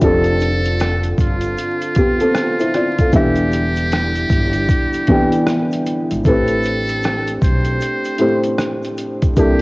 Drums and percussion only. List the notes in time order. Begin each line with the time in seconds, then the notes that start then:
0.01 kick, closed hi-hat, shaker
0.24 closed hi-hat, shaker
0.40 closed hi-hat, shaker
0.64 closed hi-hat, shaker
0.80 cross-stick, closed hi-hat, shaker
1.04 closed hi-hat, shaker
1.18 kick, closed hi-hat, shaker
1.41 closed hi-hat, shaker
1.58 closed hi-hat, shaker
1.82 closed hi-hat, shaker
1.95 kick, closed hi-hat, shaker
2.20 closed hi-hat, shaker
2.34 cross-stick, closed hi-hat, shaker
2.59 closed hi-hat, shaker
2.74 cross-stick, closed hi-hat
2.99 kick, closed hi-hat, shaker
3.12 kick, closed hi-hat, shaker
3.36 closed hi-hat, shaker
3.52 closed hi-hat, shaker
3.76 closed hi-hat, shaker
3.91 cross-stick, closed hi-hat, shaker
4.15 closed hi-hat, shaker
4.30 kick, closed hi-hat, shaker
4.53 closed hi-hat, shaker
4.69 kick, closed hi-hat, shaker
4.93 closed hi-hat, shaker
5.07 kick, closed hi-hat
5.32 closed hi-hat, shaker
5.46 cross-stick, closed hi-hat, shaker
5.71 closed hi-hat, shaker
5.86 closed hi-hat, shaker
6.11 closed hi-hat, shaker
6.24 kick, closed hi-hat, shaker
6.48 closed hi-hat, shaker
6.63 closed hi-hat, shaker
6.87 closed hi-hat, shaker
7.03 cross-stick, closed hi-hat, shaker
7.27 closed hi-hat, shaker
7.42 kick, closed hi-hat, shaker
7.65 closed hi-hat, shaker
7.81 closed hi-hat, shaker
8.05 closed hi-hat, shaker
8.18 closed hi-hat
8.44 closed hi-hat, shaker
8.58 cross-stick, closed hi-hat, shaker
8.83 closed hi-hat, shaker
8.98 closed hi-hat, shaker
9.22 kick, closed hi-hat, shaker
9.36 kick, closed hi-hat, shaker